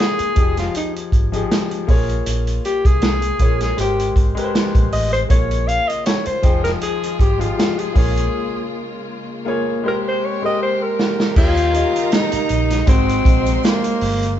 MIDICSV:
0, 0, Header, 1, 8, 480
1, 0, Start_track
1, 0, Tempo, 758534
1, 1433, Time_signature, 4, 2, 24, 8
1, 9109, End_track
2, 0, Start_track
2, 0, Title_t, "Violin section"
2, 0, Program_c, 0, 48
2, 7189, Note_on_c, 0, 70, 80
2, 7190, Note_on_c, 0, 82, 105
2, 8130, Note_off_c, 0, 70, 0
2, 8130, Note_off_c, 0, 82, 0
2, 8147, Note_on_c, 0, 72, 89
2, 8149, Note_on_c, 0, 84, 90
2, 9088, Note_off_c, 0, 72, 0
2, 9089, Note_off_c, 0, 84, 0
2, 9109, End_track
3, 0, Start_track
3, 0, Title_t, "Alto saxophone"
3, 0, Program_c, 1, 65
3, 0, Note_on_c, 1, 68, 110
3, 370, Note_off_c, 1, 68, 0
3, 376, Note_on_c, 1, 65, 77
3, 472, Note_off_c, 1, 65, 0
3, 488, Note_on_c, 1, 63, 72
3, 589, Note_off_c, 1, 63, 0
3, 1680, Note_on_c, 1, 67, 95
3, 1806, Note_on_c, 1, 68, 109
3, 1816, Note_off_c, 1, 67, 0
3, 2284, Note_off_c, 1, 68, 0
3, 2294, Note_on_c, 1, 68, 88
3, 2391, Note_off_c, 1, 68, 0
3, 2408, Note_on_c, 1, 67, 84
3, 2624, Note_off_c, 1, 67, 0
3, 3118, Note_on_c, 1, 75, 93
3, 3236, Note_off_c, 1, 75, 0
3, 3246, Note_on_c, 1, 72, 96
3, 3294, Note_off_c, 1, 72, 0
3, 3357, Note_on_c, 1, 73, 90
3, 3592, Note_on_c, 1, 77, 107
3, 3601, Note_off_c, 1, 73, 0
3, 3721, Note_on_c, 1, 75, 95
3, 3731, Note_off_c, 1, 77, 0
3, 3832, Note_off_c, 1, 75, 0
3, 3838, Note_on_c, 1, 73, 87
3, 3956, Note_off_c, 1, 73, 0
3, 3967, Note_on_c, 1, 72, 90
3, 4188, Note_off_c, 1, 72, 0
3, 4202, Note_on_c, 1, 70, 86
3, 4252, Note_off_c, 1, 70, 0
3, 4319, Note_on_c, 1, 68, 89
3, 4559, Note_on_c, 1, 67, 78
3, 4569, Note_off_c, 1, 68, 0
3, 4686, Note_on_c, 1, 65, 76
3, 4695, Note_off_c, 1, 67, 0
3, 4928, Note_on_c, 1, 68, 81
3, 4938, Note_off_c, 1, 65, 0
3, 5645, Note_off_c, 1, 68, 0
3, 6251, Note_on_c, 1, 70, 84
3, 6305, Note_off_c, 1, 70, 0
3, 6380, Note_on_c, 1, 72, 96
3, 6487, Note_on_c, 1, 73, 84
3, 6497, Note_off_c, 1, 72, 0
3, 6609, Note_off_c, 1, 73, 0
3, 6616, Note_on_c, 1, 75, 105
3, 6711, Note_off_c, 1, 75, 0
3, 6724, Note_on_c, 1, 72, 97
3, 6849, Note_on_c, 1, 70, 83
3, 6859, Note_off_c, 1, 72, 0
3, 7194, Note_off_c, 1, 70, 0
3, 7198, Note_on_c, 1, 65, 107
3, 7676, Note_on_c, 1, 63, 94
3, 7686, Note_off_c, 1, 65, 0
3, 8152, Note_on_c, 1, 60, 107
3, 8162, Note_off_c, 1, 63, 0
3, 8631, Note_off_c, 1, 60, 0
3, 8640, Note_on_c, 1, 58, 90
3, 9109, Note_off_c, 1, 58, 0
3, 9109, End_track
4, 0, Start_track
4, 0, Title_t, "Grand piano"
4, 0, Program_c, 2, 0
4, 0, Control_c, 2, 64, 127
4, 0, Note_on_c, 2, 58, 79
4, 0, Note_on_c, 2, 65, 73
4, 0, Note_on_c, 2, 68, 63
4, 0, Note_on_c, 2, 73, 76
4, 111, Note_off_c, 2, 58, 0
4, 114, Note_off_c, 2, 65, 0
4, 117, Note_off_c, 2, 68, 0
4, 141, Note_off_c, 2, 73, 0
4, 224, Note_on_c, 2, 53, 71
4, 230, Note_on_c, 2, 63, 63
4, 235, Note_on_c, 2, 67, 60
4, 240, Control_c, 2, 64, 0
4, 242, Note_on_c, 2, 68, 76
4, 354, Control_c, 2, 64, 127
4, 724, Note_off_c, 2, 53, 0
4, 727, Note_off_c, 2, 63, 0
4, 729, Note_off_c, 2, 67, 0
4, 733, Note_off_c, 2, 68, 0
4, 836, Note_on_c, 2, 53, 77
4, 841, Note_on_c, 2, 63, 69
4, 849, Note_on_c, 2, 67, 66
4, 855, Note_on_c, 2, 68, 87
4, 1184, Note_on_c, 2, 58, 87
4, 1188, Note_off_c, 2, 68, 0
4, 1190, Note_off_c, 2, 53, 0
4, 1190, Note_on_c, 2, 65, 74
4, 1192, Note_off_c, 2, 63, 0
4, 1196, Note_off_c, 2, 67, 0
4, 1197, Note_on_c, 2, 68, 73
4, 1201, Control_c, 2, 64, 0
4, 1202, Note_on_c, 2, 73, 94
4, 1301, Control_c, 2, 64, 127
4, 1985, Note_off_c, 2, 58, 0
4, 1988, Note_off_c, 2, 65, 0
4, 1992, Note_off_c, 2, 68, 0
4, 1994, Note_off_c, 2, 73, 0
4, 2146, Note_on_c, 2, 58, 71
4, 2153, Note_on_c, 2, 65, 62
4, 2159, Note_on_c, 2, 68, 62
4, 2163, Note_on_c, 2, 73, 75
4, 2385, Note_on_c, 2, 56, 69
4, 2389, Note_off_c, 2, 58, 0
4, 2392, Note_on_c, 2, 67, 64
4, 2393, Note_off_c, 2, 65, 0
4, 2396, Note_off_c, 2, 68, 0
4, 2398, Note_off_c, 2, 73, 0
4, 2398, Note_on_c, 2, 70, 63
4, 2400, Control_c, 2, 64, 0
4, 2404, Note_on_c, 2, 72, 80
4, 2517, Control_c, 2, 64, 127
4, 2690, Note_off_c, 2, 56, 0
4, 2693, Note_off_c, 2, 67, 0
4, 2697, Note_off_c, 2, 70, 0
4, 2699, Note_off_c, 2, 72, 0
4, 2751, Note_on_c, 2, 56, 82
4, 2759, Note_on_c, 2, 67, 70
4, 2763, Note_on_c, 2, 70, 78
4, 2771, Note_on_c, 2, 71, 74
4, 2804, Note_off_c, 2, 71, 0
4, 2810, Note_on_c, 2, 72, 86
4, 3250, Note_off_c, 2, 56, 0
4, 3254, Note_off_c, 2, 67, 0
4, 3256, Note_off_c, 2, 70, 0
4, 3279, Note_off_c, 2, 72, 0
4, 3344, Note_on_c, 2, 58, 67
4, 3349, Note_on_c, 2, 65, 60
4, 3355, Note_on_c, 2, 68, 57
4, 3360, Control_c, 2, 64, 0
4, 3360, Note_on_c, 2, 73, 68
4, 3475, Control_c, 2, 64, 127
4, 3951, Note_off_c, 2, 58, 0
4, 3953, Note_off_c, 2, 65, 0
4, 3956, Note_off_c, 2, 68, 0
4, 3959, Note_off_c, 2, 73, 0
4, 4064, Note_on_c, 2, 53, 74
4, 4070, Note_on_c, 2, 63, 73
4, 4074, Note_on_c, 2, 79, 69
4, 4081, Control_c, 2, 64, 0
4, 4082, Note_on_c, 2, 68, 85
4, 4205, Control_c, 2, 64, 127
4, 4564, Note_off_c, 2, 53, 0
4, 4567, Note_off_c, 2, 63, 0
4, 4569, Note_off_c, 2, 79, 0
4, 4573, Note_off_c, 2, 68, 0
4, 4671, Note_on_c, 2, 53, 69
4, 4675, Note_on_c, 2, 63, 61
4, 4682, Note_on_c, 2, 67, 59
4, 4688, Note_on_c, 2, 68, 71
4, 5022, Note_on_c, 2, 58, 72
4, 5024, Note_off_c, 2, 68, 0
4, 5027, Note_off_c, 2, 53, 0
4, 5028, Note_on_c, 2, 65, 70
4, 5029, Note_off_c, 2, 63, 0
4, 5032, Note_off_c, 2, 67, 0
4, 5033, Note_on_c, 2, 68, 60
4, 5040, Control_c, 2, 64, 0
4, 5041, Note_on_c, 2, 73, 79
4, 5160, Control_c, 2, 64, 127
4, 5823, Note_off_c, 2, 58, 0
4, 5827, Note_off_c, 2, 65, 0
4, 5829, Note_off_c, 2, 68, 0
4, 5833, Note_off_c, 2, 73, 0
4, 5980, Note_on_c, 2, 58, 91
4, 5985, Note_on_c, 2, 65, 77
4, 5993, Note_on_c, 2, 68, 79
4, 5999, Note_on_c, 2, 73, 92
4, 6223, Note_on_c, 2, 56, 74
4, 6226, Note_off_c, 2, 58, 0
4, 6228, Note_off_c, 2, 65, 0
4, 6228, Note_on_c, 2, 67, 72
4, 6232, Note_off_c, 2, 68, 0
4, 6234, Note_on_c, 2, 70, 72
4, 6235, Note_off_c, 2, 73, 0
4, 6239, Note_on_c, 2, 72, 88
4, 6240, Control_c, 2, 64, 0
4, 6344, Control_c, 2, 64, 127
4, 6528, Note_off_c, 2, 56, 0
4, 6531, Note_off_c, 2, 67, 0
4, 6534, Note_off_c, 2, 70, 0
4, 6536, Note_off_c, 2, 72, 0
4, 6594, Note_on_c, 2, 56, 67
4, 6601, Note_on_c, 2, 67, 66
4, 6606, Note_on_c, 2, 70, 66
4, 6612, Note_on_c, 2, 72, 74
4, 7090, Note_off_c, 2, 56, 0
4, 7094, Note_off_c, 2, 67, 0
4, 7097, Note_off_c, 2, 70, 0
4, 7100, Note_off_c, 2, 72, 0
4, 7184, Note_on_c, 2, 51, 72
4, 7189, Note_on_c, 2, 63, 66
4, 7196, Note_on_c, 2, 67, 69
4, 7198, Control_c, 2, 64, 0
4, 7202, Note_on_c, 2, 73, 74
4, 7311, Control_c, 2, 64, 127
4, 7388, Note_off_c, 2, 51, 0
4, 7391, Note_off_c, 2, 63, 0
4, 7394, Note_off_c, 2, 67, 0
4, 7397, Note_off_c, 2, 73, 0
4, 7422, Note_on_c, 2, 51, 75
4, 7427, Note_on_c, 2, 63, 68
4, 7432, Note_on_c, 2, 67, 70
4, 7438, Note_on_c, 2, 75, 81
4, 8135, Note_off_c, 2, 63, 0
4, 8139, Note_on_c, 2, 56, 76
4, 8144, Note_on_c, 2, 63, 70
4, 8145, Note_off_c, 2, 51, 0
4, 8151, Note_off_c, 2, 67, 0
4, 8151, Note_on_c, 2, 66, 71
4, 8153, Note_off_c, 2, 75, 0
4, 8156, Note_on_c, 2, 72, 93
4, 8158, Control_c, 2, 64, 0
4, 8265, Control_c, 2, 64, 127
4, 8940, Note_off_c, 2, 56, 0
4, 8943, Note_off_c, 2, 63, 0
4, 8946, Note_off_c, 2, 66, 0
4, 8949, Note_off_c, 2, 72, 0
4, 9109, End_track
5, 0, Start_track
5, 0, Title_t, "String section"
5, 0, Program_c, 3, 48
5, 3352, Note_on_c, 3, 49, 79
5, 3353, Note_on_c, 3, 56, 72
5, 3353, Note_on_c, 3, 58, 72
5, 3353, Note_on_c, 3, 65, 91
5, 4065, Note_off_c, 3, 49, 0
5, 4065, Note_off_c, 3, 58, 0
5, 4075, Note_on_c, 3, 51, 77
5, 4076, Note_on_c, 3, 53, 70
5, 5024, Note_off_c, 3, 51, 0
5, 5024, Note_off_c, 3, 53, 0
5, 5032, Note_on_c, 3, 58, 77
5, 5033, Note_on_c, 3, 49, 80
5, 6207, Note_off_c, 3, 65, 0
5, 6220, Note_off_c, 3, 49, 0
5, 6234, Note_on_c, 3, 67, 87
5, 6235, Note_on_c, 3, 48, 74
5, 7166, Note_off_c, 3, 56, 0
5, 7169, Note_off_c, 3, 58, 0
5, 7182, Note_off_c, 3, 67, 0
5, 7183, Note_off_c, 3, 48, 0
5, 7192, Note_on_c, 3, 49, 87
5, 7192, Note_on_c, 3, 58, 81
5, 7192, Note_on_c, 3, 63, 102
5, 7193, Note_on_c, 3, 55, 80
5, 8137, Note_off_c, 3, 63, 0
5, 8141, Note_off_c, 3, 49, 0
5, 8141, Note_off_c, 3, 55, 0
5, 8141, Note_off_c, 3, 58, 0
5, 8143, Note_on_c, 3, 48, 85
5, 8144, Note_on_c, 3, 54, 69
5, 8144, Note_on_c, 3, 63, 96
5, 8147, Note_on_c, 3, 56, 75
5, 9095, Note_off_c, 3, 48, 0
5, 9096, Note_off_c, 3, 54, 0
5, 9096, Note_off_c, 3, 63, 0
5, 9098, Note_off_c, 3, 56, 0
5, 9109, End_track
6, 0, Start_track
6, 0, Title_t, "Fingered electric bass"
6, 0, Program_c, 4, 33
6, 234, Note_on_c, 4, 29, 72
6, 427, Note_off_c, 4, 29, 0
6, 711, Note_on_c, 4, 32, 81
6, 906, Note_off_c, 4, 32, 0
6, 1194, Note_on_c, 4, 34, 90
6, 1387, Note_off_c, 4, 34, 0
6, 1435, Note_on_c, 4, 34, 89
6, 1628, Note_off_c, 4, 34, 0
6, 1804, Note_on_c, 4, 36, 70
6, 2086, Note_off_c, 4, 36, 0
6, 2149, Note_on_c, 4, 34, 72
6, 2344, Note_off_c, 4, 34, 0
6, 2393, Note_on_c, 4, 32, 90
6, 2587, Note_off_c, 4, 32, 0
6, 2633, Note_on_c, 4, 32, 83
6, 2737, Note_off_c, 4, 32, 0
6, 3006, Note_on_c, 4, 34, 91
6, 3094, Note_off_c, 4, 34, 0
6, 3114, Note_on_c, 4, 33, 87
6, 3307, Note_off_c, 4, 33, 0
6, 3355, Note_on_c, 4, 34, 94
6, 3652, Note_off_c, 4, 34, 0
6, 4074, Note_on_c, 4, 29, 84
6, 4267, Note_off_c, 4, 29, 0
6, 4554, Note_on_c, 4, 32, 93
6, 4747, Note_off_c, 4, 32, 0
6, 5038, Note_on_c, 4, 34, 103
6, 5229, Note_off_c, 4, 34, 0
6, 7192, Note_on_c, 4, 39, 96
6, 7489, Note_off_c, 4, 39, 0
6, 7911, Note_on_c, 4, 34, 88
6, 8104, Note_off_c, 4, 34, 0
6, 8149, Note_on_c, 4, 32, 102
6, 8343, Note_off_c, 4, 32, 0
6, 8387, Note_on_c, 4, 34, 91
6, 8581, Note_off_c, 4, 34, 0
6, 8870, Note_on_c, 4, 31, 92
6, 9109, Note_off_c, 4, 31, 0
6, 9109, End_track
7, 0, Start_track
7, 0, Title_t, "Muted fingered electric bass strokes"
7, 124, Note_on_c, 9, 29, 43
7, 188, Note_off_c, 9, 29, 0
7, 3966, Note_on_c, 9, 29, 49
7, 4029, Note_off_c, 9, 29, 0
7, 7803, Note_on_c, 9, 29, 51
7, 7867, Note_off_c, 9, 29, 0
7, 9109, End_track
8, 0, Start_track
8, 0, Title_t, "Drums"
8, 3, Note_on_c, 9, 38, 93
8, 66, Note_off_c, 9, 38, 0
8, 119, Note_on_c, 9, 42, 60
8, 182, Note_off_c, 9, 42, 0
8, 226, Note_on_c, 9, 42, 58
8, 232, Note_on_c, 9, 36, 89
8, 289, Note_off_c, 9, 42, 0
8, 295, Note_off_c, 9, 36, 0
8, 362, Note_on_c, 9, 42, 52
8, 365, Note_on_c, 9, 38, 34
8, 425, Note_off_c, 9, 42, 0
8, 429, Note_off_c, 9, 38, 0
8, 472, Note_on_c, 9, 42, 74
8, 535, Note_off_c, 9, 42, 0
8, 610, Note_on_c, 9, 42, 50
8, 673, Note_off_c, 9, 42, 0
8, 711, Note_on_c, 9, 36, 77
8, 715, Note_on_c, 9, 42, 54
8, 774, Note_off_c, 9, 36, 0
8, 778, Note_off_c, 9, 42, 0
8, 843, Note_on_c, 9, 42, 48
8, 907, Note_off_c, 9, 42, 0
8, 959, Note_on_c, 9, 38, 109
8, 959, Note_on_c, 9, 42, 95
8, 1022, Note_off_c, 9, 38, 0
8, 1022, Note_off_c, 9, 42, 0
8, 1083, Note_on_c, 9, 42, 55
8, 1146, Note_off_c, 9, 42, 0
8, 1193, Note_on_c, 9, 36, 87
8, 1193, Note_on_c, 9, 46, 65
8, 1256, Note_off_c, 9, 46, 0
8, 1257, Note_off_c, 9, 36, 0
8, 1325, Note_on_c, 9, 42, 49
8, 1388, Note_off_c, 9, 42, 0
8, 1431, Note_on_c, 9, 42, 81
8, 1494, Note_off_c, 9, 42, 0
8, 1563, Note_on_c, 9, 42, 49
8, 1626, Note_off_c, 9, 42, 0
8, 1675, Note_on_c, 9, 42, 57
8, 1739, Note_off_c, 9, 42, 0
8, 1803, Note_on_c, 9, 36, 89
8, 1805, Note_on_c, 9, 42, 49
8, 1866, Note_off_c, 9, 36, 0
8, 1868, Note_off_c, 9, 42, 0
8, 1909, Note_on_c, 9, 42, 82
8, 1915, Note_on_c, 9, 38, 113
8, 1972, Note_off_c, 9, 42, 0
8, 1979, Note_off_c, 9, 38, 0
8, 2037, Note_on_c, 9, 42, 61
8, 2101, Note_off_c, 9, 42, 0
8, 2146, Note_on_c, 9, 42, 59
8, 2149, Note_on_c, 9, 36, 72
8, 2210, Note_off_c, 9, 42, 0
8, 2212, Note_off_c, 9, 36, 0
8, 2281, Note_on_c, 9, 42, 57
8, 2285, Note_on_c, 9, 38, 37
8, 2344, Note_off_c, 9, 42, 0
8, 2348, Note_off_c, 9, 38, 0
8, 2391, Note_on_c, 9, 42, 76
8, 2454, Note_off_c, 9, 42, 0
8, 2528, Note_on_c, 9, 42, 55
8, 2591, Note_off_c, 9, 42, 0
8, 2631, Note_on_c, 9, 36, 84
8, 2635, Note_on_c, 9, 42, 55
8, 2695, Note_off_c, 9, 36, 0
8, 2698, Note_off_c, 9, 42, 0
8, 2765, Note_on_c, 9, 42, 51
8, 2828, Note_off_c, 9, 42, 0
8, 2881, Note_on_c, 9, 38, 107
8, 2881, Note_on_c, 9, 42, 92
8, 2944, Note_off_c, 9, 38, 0
8, 2944, Note_off_c, 9, 42, 0
8, 3004, Note_on_c, 9, 36, 89
8, 3006, Note_on_c, 9, 42, 53
8, 3068, Note_off_c, 9, 36, 0
8, 3069, Note_off_c, 9, 42, 0
8, 3116, Note_on_c, 9, 46, 63
8, 3179, Note_off_c, 9, 46, 0
8, 3252, Note_on_c, 9, 42, 52
8, 3315, Note_off_c, 9, 42, 0
8, 3354, Note_on_c, 9, 42, 77
8, 3355, Note_on_c, 9, 36, 94
8, 3417, Note_off_c, 9, 42, 0
8, 3418, Note_off_c, 9, 36, 0
8, 3486, Note_on_c, 9, 42, 50
8, 3550, Note_off_c, 9, 42, 0
8, 3598, Note_on_c, 9, 42, 61
8, 3661, Note_off_c, 9, 42, 0
8, 3731, Note_on_c, 9, 42, 48
8, 3794, Note_off_c, 9, 42, 0
8, 3834, Note_on_c, 9, 42, 87
8, 3840, Note_on_c, 9, 38, 108
8, 3897, Note_off_c, 9, 42, 0
8, 3903, Note_off_c, 9, 38, 0
8, 3958, Note_on_c, 9, 42, 59
8, 4021, Note_off_c, 9, 42, 0
8, 4069, Note_on_c, 9, 42, 62
8, 4073, Note_on_c, 9, 36, 92
8, 4133, Note_off_c, 9, 42, 0
8, 4137, Note_off_c, 9, 36, 0
8, 4205, Note_on_c, 9, 42, 54
8, 4209, Note_on_c, 9, 38, 39
8, 4269, Note_off_c, 9, 42, 0
8, 4272, Note_off_c, 9, 38, 0
8, 4312, Note_on_c, 9, 42, 80
8, 4375, Note_off_c, 9, 42, 0
8, 4451, Note_on_c, 9, 42, 50
8, 4514, Note_off_c, 9, 42, 0
8, 4553, Note_on_c, 9, 36, 79
8, 4558, Note_on_c, 9, 42, 59
8, 4616, Note_off_c, 9, 36, 0
8, 4622, Note_off_c, 9, 42, 0
8, 4688, Note_on_c, 9, 42, 50
8, 4751, Note_off_c, 9, 42, 0
8, 4806, Note_on_c, 9, 38, 104
8, 4806, Note_on_c, 9, 42, 91
8, 4869, Note_off_c, 9, 38, 0
8, 4869, Note_off_c, 9, 42, 0
8, 4927, Note_on_c, 9, 42, 53
8, 4990, Note_off_c, 9, 42, 0
8, 5035, Note_on_c, 9, 36, 94
8, 5036, Note_on_c, 9, 46, 63
8, 5098, Note_off_c, 9, 36, 0
8, 5099, Note_off_c, 9, 46, 0
8, 5172, Note_on_c, 9, 42, 55
8, 5236, Note_off_c, 9, 42, 0
8, 6957, Note_on_c, 9, 38, 85
8, 7020, Note_off_c, 9, 38, 0
8, 7086, Note_on_c, 9, 38, 88
8, 7149, Note_off_c, 9, 38, 0
8, 7190, Note_on_c, 9, 36, 95
8, 7190, Note_on_c, 9, 49, 92
8, 7196, Note_on_c, 9, 82, 75
8, 7253, Note_off_c, 9, 49, 0
8, 7254, Note_off_c, 9, 36, 0
8, 7260, Note_off_c, 9, 82, 0
8, 7318, Note_on_c, 9, 82, 46
8, 7323, Note_on_c, 9, 42, 51
8, 7382, Note_off_c, 9, 82, 0
8, 7386, Note_off_c, 9, 42, 0
8, 7431, Note_on_c, 9, 42, 67
8, 7437, Note_on_c, 9, 82, 55
8, 7495, Note_off_c, 9, 42, 0
8, 7500, Note_off_c, 9, 82, 0
8, 7566, Note_on_c, 9, 42, 56
8, 7573, Note_on_c, 9, 82, 58
8, 7630, Note_off_c, 9, 42, 0
8, 7636, Note_off_c, 9, 82, 0
8, 7668, Note_on_c, 9, 42, 90
8, 7675, Note_on_c, 9, 38, 118
8, 7677, Note_on_c, 9, 82, 73
8, 7731, Note_off_c, 9, 42, 0
8, 7738, Note_off_c, 9, 38, 0
8, 7740, Note_off_c, 9, 82, 0
8, 7795, Note_on_c, 9, 42, 70
8, 7803, Note_on_c, 9, 82, 50
8, 7858, Note_off_c, 9, 42, 0
8, 7866, Note_off_c, 9, 82, 0
8, 7904, Note_on_c, 9, 42, 63
8, 7914, Note_on_c, 9, 82, 55
8, 7967, Note_off_c, 9, 42, 0
8, 7977, Note_off_c, 9, 82, 0
8, 8039, Note_on_c, 9, 42, 61
8, 8043, Note_on_c, 9, 38, 40
8, 8045, Note_on_c, 9, 82, 50
8, 8102, Note_off_c, 9, 42, 0
8, 8106, Note_off_c, 9, 38, 0
8, 8109, Note_off_c, 9, 82, 0
8, 8144, Note_on_c, 9, 42, 87
8, 8147, Note_on_c, 9, 36, 101
8, 8159, Note_on_c, 9, 82, 61
8, 8208, Note_off_c, 9, 42, 0
8, 8211, Note_off_c, 9, 36, 0
8, 8223, Note_off_c, 9, 82, 0
8, 8285, Note_on_c, 9, 42, 55
8, 8288, Note_on_c, 9, 82, 46
8, 8348, Note_off_c, 9, 42, 0
8, 8351, Note_off_c, 9, 82, 0
8, 8386, Note_on_c, 9, 36, 97
8, 8390, Note_on_c, 9, 42, 65
8, 8450, Note_off_c, 9, 36, 0
8, 8454, Note_off_c, 9, 42, 0
8, 8517, Note_on_c, 9, 82, 59
8, 8519, Note_on_c, 9, 42, 55
8, 8580, Note_off_c, 9, 82, 0
8, 8582, Note_off_c, 9, 42, 0
8, 8627, Note_on_c, 9, 82, 63
8, 8636, Note_on_c, 9, 38, 120
8, 8636, Note_on_c, 9, 42, 109
8, 8691, Note_off_c, 9, 82, 0
8, 8699, Note_off_c, 9, 38, 0
8, 8699, Note_off_c, 9, 42, 0
8, 8758, Note_on_c, 9, 42, 63
8, 8764, Note_on_c, 9, 82, 51
8, 8821, Note_off_c, 9, 42, 0
8, 8827, Note_off_c, 9, 82, 0
8, 8866, Note_on_c, 9, 46, 72
8, 8929, Note_off_c, 9, 46, 0
8, 8997, Note_on_c, 9, 82, 52
8, 9003, Note_on_c, 9, 42, 54
8, 9061, Note_off_c, 9, 82, 0
8, 9066, Note_off_c, 9, 42, 0
8, 9109, End_track
0, 0, End_of_file